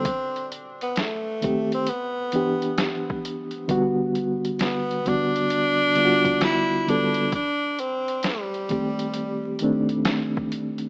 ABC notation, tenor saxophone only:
X:1
M:4/4
L:1/16
Q:"Swing 16ths" 1/4=66
K:G
V:1 name="Tenor saxophone"
C2 z B, A,3 C B,6 z2 | z4 B,2 D6 E2 D2 | D2 C2 G,8 z4 |]